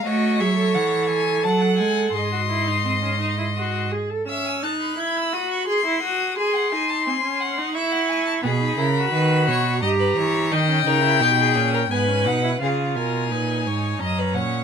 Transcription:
0.05 0.41 A3 medium
0.05 0.42 F#4 medium
0.05 1.44 C#5 medium
0.05 0.41 D#5 medium
0.40 0.76 F#3 medium
0.40 0.57 G#4 medium
0.40 0.75 E5 medium
0.57 2.16 A4 medium
0.74 1.46 E3 medium
0.74 1.08 F#5 medium
1.09 1.45 G#5 medium
1.44 1.81 F#3 medium
1.44 2.13 F#5 medium
1.44 1.62 A5 medium
1.61 1.78 F#5 medium
1.79 2.14 G#3 medium
1.79 2.13 G#5 medium
2.13 3.89 G#2 medium
2.13 2.31 G#4 medium
2.13 3.89 D#5 medium
2.13 3.88 C6 medium
2.32 2.39 F#4 medium
2.49 2.69 E4 medium
2.68 2.85 D#4 medium
2.85 2.92 C4 medium
3.03 3.20 C#4 medium
3.20 3.38 D#4 medium
3.38 3.45 E4 medium
3.56 3.93 F#4 medium
3.92 4.11 G#4 medium
4.10 4.27 A4 medium
4.27 4.64 C#4 medium
4.27 4.48 E5 medium
4.27 4.65 E6 medium
4.46 4.63 G#5 medium
4.63 4.98 D#4 medium
4.63 4.71 A5 medium
4.63 5.01 F#6 medium
4.81 5.66 B5 medium
4.98 5.34 E4 medium
4.98 5.18 G#6 medium
5.17 5.35 E6 medium
5.33 5.67 F#4 medium
5.33 5.51 D#6 medium
5.51 5.67 C#6 medium
5.68 5.85 G#4 medium
5.68 6.36 C6 medium
5.68 6.02 C6 medium
5.86 6.02 E4 medium
6.03 6.37 F#4 medium
6.03 6.37 D#6 medium
6.37 6.73 G#4 medium
6.37 6.56 G#5 medium
6.37 7.73 C6 medium
6.55 6.71 F#5 medium
6.72 7.08 D#4 medium
6.72 6.90 G#5 medium
6.89 7.05 A5 medium
7.06 7.23 C4 medium
7.06 7.42 G#5 medium
7.24 7.59 C#4 medium
7.40 7.74 F#5 medium
7.58 7.76 D#4 medium
7.75 8.43 E4 loud
7.75 7.93 E5 medium
7.75 8.42 C#6 medium
7.91 8.10 F#5 medium
8.09 8.26 G#5 medium
8.26 8.33 A5 medium
8.42 8.76 B2 medium
8.42 8.50 B3 medium
8.42 8.79 G#4 medium
8.42 9.79 B5 medium
8.61 8.78 D#4 medium
8.78 9.12 C#3 medium
8.78 8.85 E4 medium
8.78 9.11 A#4 loud
8.96 9.81 F#4 medium
9.12 9.49 D#3 medium
9.12 9.46 B4 medium
9.47 9.83 B2 medium
9.47 9.81 C#5 medium
9.82 10.16 G2 medium
9.82 10.50 G4 medium
9.82 9.89 D#5 loud
9.82 10.53 A#5 medium
10.00 10.16 B4 medium
10.17 10.53 E3 medium
10.17 10.54 C#5 loud
10.51 10.85 D#3 medium
10.51 10.58 D#4 medium
10.51 10.88 D#5 loud
10.51 11.92 G5 loud
10.69 10.86 C#4 medium
10.86 11.22 C#3 medium
10.86 11.03 D#4 medium
10.86 11.21 A#4 loud
11.03 11.22 E4 medium
11.21 11.57 B2 medium
11.21 11.57 D#4 medium
11.21 11.29 G4 medium
11.39 11.73 G#4 medium
11.56 11.90 A#2 medium
11.56 11.90 C#4 medium
11.74 11.81 A#4 medium
11.90 12.27 G#2 medium
11.90 12.10 B3 medium
11.90 12.60 B4 loud
11.90 12.28 G#5 medium
12.08 12.27 C#4 medium
12.26 12.61 B2 medium
12.26 12.43 D#4 medium
12.26 12.60 F#5 medium
12.44 12.51 E4 medium
12.61 12.98 C#3 medium
12.61 13.27 F4 medium
12.61 12.94 G#4 medium
12.61 12.98 F5 medium
12.96 13.33 B2 medium
12.96 13.33 A#4 medium
12.96 14.01 G#5 medium
13.31 13.67 A#2 medium
13.31 14.01 D#4 medium
13.31 13.68 B4 medium
13.66 13.99 G#2 medium
13.66 14.00 C#5 medium
14.00 14.36 F#2 medium
14.00 14.64 C#4 medium
14.00 14.20 D#5 medium
14.00 14.36 A#5 medium
14.18 14.37 B4 medium
14.34 14.64 A#2 medium
14.34 14.64 C#5 medium
14.34 14.64 F#5 medium

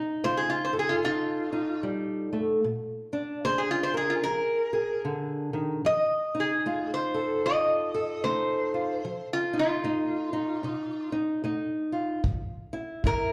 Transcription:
0.00 0.17 F3 medium
0.00 1.03 D#4 medium
0.24 0.97 A3 medium
0.24 3.45 F4 medium
0.24 0.40 C5 medium
0.37 0.49 G#4 medium
0.50 0.71 F4 medium
0.65 0.73 C5 medium
0.73 2.64 A4 medium
0.79 0.94 G#4 medium
0.89 1.01 F4 medium
1.04 1.78 C3 medium
1.04 1.51 D#4 medium
1.04 1.82 F4 medium
1.52 2.60 D#4 medium
1.83 2.32 G3 medium
2.33 2.64 A3 medium
2.64 3.38 A#2 medium
3.13 5.81 D4 medium
3.45 4.18 A#3 medium
3.45 4.24 G#4 medium
3.45 3.60 C5 loud
3.58 3.69 G#4 medium
3.71 3.92 F4 medium
3.83 3.93 C5 medium
3.94 4.13 G#4 medium
3.94 5.81 A#4 medium
4.10 4.22 F4 medium
4.24 4.98 F3 medium
4.24 4.72 G#4 medium
4.24 5.01 A#4 medium
4.73 5.81 G#4 medium
5.05 5.53 D3 medium
5.53 5.84 D#3 medium
5.85 6.58 F3 medium
5.85 6.37 D#5 medium
6.35 8.24 D#4 medium
6.40 6.90 G#4 medium
6.66 7.39 A3 medium
6.66 7.46 F4 medium
6.94 7.44 C5 medium
7.14 7.93 A4 medium
7.46 8.18 C3 medium
7.46 8.73 F4 medium
7.46 8.23 D#5 loud
7.94 12.26 A4 medium
8.24 8.98 A3 medium
8.24 9.01 D#4 medium
8.24 9.27 C5 medium
8.74 9.01 F4 medium
9.05 9.78 F3 medium
9.33 9.58 F4 medium
9.53 9.83 D#4 medium
9.59 11.15 F4 medium
9.84 10.58 A3 medium
9.84 10.32 D#4 medium
10.33 10.63 D#4 medium
10.63 11.37 C3 medium
10.63 11.11 D#4 medium
11.12 11.43 D#4 medium
11.44 12.18 A3 medium
11.44 12.21 D#4 medium
11.92 12.21 F4 medium
12.24 12.98 C3 medium
12.24 kick medium
12.73 13.05 E4 medium
13.04 13.33 G3 medium
13.04 13.33 E4 medium
13.04 13.32 A#4 loud
13.04 kick medium

